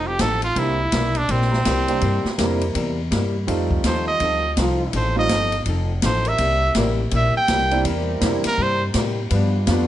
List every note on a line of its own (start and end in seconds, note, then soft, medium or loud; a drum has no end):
0.00 0.18 F1 medium
0.00 0.17 F3 medium
0.00 0.11 G3 medium
0.00 0.11 A3 medium
0.00 0.11 C4 soft
0.00 0.17 C4 medium
0.00 0.11 D#4 medium
0.00 0.17 D#4 medium
0.00 0.11 F4 medium
0.00 0.17 A4 medium
0.07 0.22 G4 medium
0.19 0.55 A1 medium
0.19 0.44 F3 medium
0.19 0.44 C4 medium
0.19 0.45 D#4 medium
0.19 0.43 A4 medium
0.19 0.45 A4 medium
0.19 kick soft
0.19 snare medium
0.19 hi-hat pedal medium
0.19 ride medium
0.42 0.60 F4 medium
0.42 ride soft
0.55 0.91 C2 medium
0.55 0.80 C3 soft
0.55 0.77 G3 medium
0.55 0.81 G3 soft
0.55 0.77 A#3 soft
0.55 0.81 A#3 soft
0.55 0.77 C4 soft
0.55 0.77 D4 soft
0.55 0.77 E4 medium
0.55 0.81 E4 soft
0.55 1.19 E4 medium
0.55 kick soft
0.55 ride medium
0.92 1.28 B1 medium
0.92 1.17 C3 medium
0.92 1.17 G3 medium
0.92 1.17 A#3 medium
0.92 1.18 E4 medium
0.92 kick soft
0.92 snare medium
0.92 hi-hat pedal soft
0.92 ride medium
1.15 1.33 D4 medium
1.15 ride soft
1.28 1.64 A#1 medium
1.28 1.53 C3 soft
1.28 1.54 G3 soft
1.28 1.54 A#3 soft
1.28 2.40 C4 medium
1.28 1.54 E4 medium
1.28 kick soft
1.28 ride medium
1.42 snare soft
1.51 1.61 G3 medium
1.51 1.61 C4 medium
1.51 1.61 E4 medium
1.51 1.61 A#4 loud
1.51 snare soft
1.65 2.01 C2 medium
1.65 1.90 C3 medium
1.65 1.90 G3 medium
1.65 1.90 A#3 medium
1.65 1.91 E4 medium
1.65 kick soft
1.65 snare medium
1.65 hi-hat pedal medium
1.65 ride medium
1.88 2.00 G3 medium
1.88 2.01 A#3 medium
1.88 2.01 C4 medium
1.88 2.01 D4 medium
1.88 2.01 G4 medium
1.88 ride soft
2.01 2.23 G2 medium
2.01 2.26 C3 medium
2.01 2.27 G3 soft
2.01 2.27 A#3 medium
2.01 2.27 E4 medium
2.01 kick soft
2.01 ride medium
2.25 muted upright bass stroke soft
2.25 snare medium
2.38 2.74 F2 medium
2.38 2.63 C3 medium
2.38 2.59 G3 medium
2.38 2.93 G3 medium
2.38 2.63 G3 medium
2.38 2.59 A#3 soft
2.38 2.63 A#3 medium
2.38 2.59 C4 soft
2.38 2.94 C4 medium
2.38 2.59 D4 soft
2.38 2.93 E4 medium
2.38 2.60 E4 medium
2.38 2.64 E4 medium
2.38 2.93 A#4 medium
2.38 kick soft
2.38 snare medium
2.38 hi-hat pedal medium
2.38 ride medium
2.61 ride soft
2.74 3.10 E2 medium
2.74 2.99 C3 soft
2.74 2.99 G3 medium
2.74 3.00 A#3 medium
2.74 3.00 E4 medium
2.74 kick soft
2.74 ride medium
3.11 3.47 G2 medium
3.11 3.35 C3 medium
3.11 3.36 G3 medium
3.11 3.36 A#3 medium
3.11 3.37 E4 medium
3.11 kick soft
3.11 snare medium
3.11 hi-hat pedal medium
3.11 ride medium
3.47 3.83 F2 medium
3.47 3.72 F3 soft
3.47 4.49 G3 medium
3.47 4.49 A3 soft
3.47 4.49 C4 medium
3.47 3.73 C4 medium
3.47 4.49 D#4 soft
3.47 3.73 D#4 soft
3.47 4.49 F4 medium
3.47 3.74 A4 medium
3.47 kick soft
3.47 ride medium
3.71 kick medium
3.84 4.20 D#2 medium
3.84 4.08 F3 medium
3.84 4.09 C4 medium
3.84 4.09 D#4 medium
3.84 4.10 A4 medium
3.84 4.07 C5 medium
3.84 kick soft
3.84 snare medium
3.84 hi-hat pedal medium
3.84 ride medium
4.08 4.54 D#5 medium
4.20 4.56 D2 medium
4.20 4.45 F3 soft
4.20 4.37 F3 medium
4.20 4.37 C4 medium
4.20 4.46 C4 soft
4.20 4.36 D#4 medium
4.20 4.46 D#4 soft
4.20 4.37 A4 medium
4.20 4.47 A4 medium
4.20 kick soft
4.20 ride medium
4.57 4.93 C2 medium
4.57 4.81 F3 medium
4.57 5.12 F3 medium
4.57 4.82 C4 medium
4.57 5.13 C4 medium
4.57 4.82 D#4 medium
4.57 5.13 D#4 medium
4.57 5.12 F4 loud
4.57 4.82 A4 medium
4.57 kick soft
4.57 snare medium
4.57 hi-hat pedal soft
4.57 ride medium
4.93 5.29 A1 medium
4.93 5.18 F3 soft
4.93 5.18 C4 soft
4.93 5.19 D#4 soft
4.93 5.19 A4 medium
4.93 5.17 C5 medium
4.93 kick soft
4.93 ride medium
5.16 5.29 G3 medium
5.16 5.29 A3 medium
5.16 5.29 C4 medium
5.16 5.29 D#4 medium
5.16 5.29 F4 medium
5.16 5.64 D#5 loud
5.29 5.65 G1 medium
5.29 5.54 F3 medium
5.29 5.55 C4 medium
5.29 5.55 D#4 medium
5.29 5.55 A4 medium
5.29 kick soft
5.29 snare medium
5.29 hi-hat pedal medium
5.29 ride medium
5.52 ride soft
5.66 6.02 F1 medium
5.66 5.91 F3 medium
5.66 5.91 C4 medium
5.66 5.92 D#4 medium
5.66 5.92 A4 medium
5.66 kick soft
5.66 ride medium
6.02 6.38 A1 medium
6.02 6.27 F3 medium
6.02 6.28 C4 medium
6.02 6.28 D#4 medium
6.02 6.28 A4 medium
6.02 6.29 C5 medium
6.02 kick soft
6.02 snare medium
6.02 hi-hat pedal medium
6.02 ride medium
6.25 6.73 G3 medium
6.25 6.73 C4 medium
6.25 6.73 E4 medium
6.25 6.73 A#4 medium
6.25 6.77 E5 medium
6.25 ride soft
6.38 6.75 C2 medium
6.38 6.63 C3 soft
6.38 6.64 G3 medium
6.38 6.65 A#3 medium
6.38 6.65 E4 medium
6.38 kick soft
6.38 ride medium
6.74 7.11 A1 medium
6.74 7.00 C3 medium
6.74 6.90 G3 medium
6.74 7.01 G3 medium
6.74 7.01 A#3 medium
6.74 6.91 C4 medium
6.74 6.90 E4 medium
6.74 7.01 E4 medium
6.74 6.91 A#4 medium
6.74 kick soft
6.74 snare medium
6.74 hi-hat pedal medium
6.74 ride medium
7.11 7.33 A#1 medium
7.11 7.36 C3 soft
7.11 7.37 G3 soft
7.11 7.38 A#3 medium
7.11 7.38 E4 medium
7.11 kick soft
7.11 ride medium
7.15 7.35 E5 medium
7.35 7.83 G5 medium
7.35 muted upright bass stroke soft
7.48 7.84 C2 medium
7.48 7.73 C3 medium
7.48 7.73 G3 medium
7.48 7.74 A#3 medium
7.48 7.74 E4 medium
7.48 kick soft
7.48 snare medium
7.48 hi-hat pedal soft
7.48 ride medium
7.71 7.84 G3 medium
7.71 7.84 A#3 medium
7.71 7.84 C4 medium
7.71 7.84 D4 medium
7.71 7.84 E4 medium
7.71 ride soft
7.84 8.21 E2 medium
7.84 8.09 C3 soft
7.84 8.86 G3 medium
7.84 8.10 G3 medium
7.84 8.11 A#3 soft
7.84 8.86 C4 medium
7.84 8.87 E4 medium
7.84 8.11 E4 medium
7.84 8.87 A#4 loud
7.84 kick soft
7.84 ride medium
8.20 8.43 F2 medium
8.20 8.46 C3 medium
8.20 8.42 G3 medium
8.20 8.46 G3 medium
8.20 8.42 A#3 medium
8.20 8.47 A#3 medium
8.20 8.42 C4 medium
8.20 8.42 D4 medium
8.20 8.42 E4 medium
8.20 8.47 E4 medium
8.20 kick soft
8.20 snare medium
8.20 hi-hat pedal medium
8.20 ride medium
8.44 8.64 A#4 medium
8.44 muted upright bass stroke soft
8.44 snare soft
8.44 ride medium
8.58 8.94 G2 medium
8.58 8.82 C3 soft
8.58 8.83 G3 soft
8.58 8.83 A#3 medium
8.58 8.84 E4 soft
8.58 kick soft
8.62 8.83 C5 medium
8.94 9.30 A2 medium
8.94 9.18 C3 medium
8.94 9.19 G3 medium
8.94 9.19 A#3 medium
8.94 9.19 E4 medium
8.94 kick soft
8.94 snare medium
8.94 hi-hat pedal medium
8.94 ride medium
9.30 9.55 G2 medium
9.30 9.67 G2 medium
9.30 9.55 F3 medium
9.30 9.85 G3 medium
9.30 9.56 B3 medium
9.30 9.86 D4 medium
9.30 9.57 D4 medium
9.30 9.85 F4 medium
9.30 9.86 B4 medium
9.30 kick soft
9.30 ride medium
9.66 9.87 F2 medium
9.66 9.87 G2 medium
9.66 9.87 F3 medium
9.66 9.87 G3 medium
9.66 9.87 A3 soft
9.66 9.87 B3 soft
9.66 9.87 B3 medium
9.66 9.87 D4 soft
9.66 9.87 D4 medium
9.66 9.87 F4 medium
9.66 kick soft
9.66 snare medium
9.66 hi-hat pedal medium
9.66 ride medium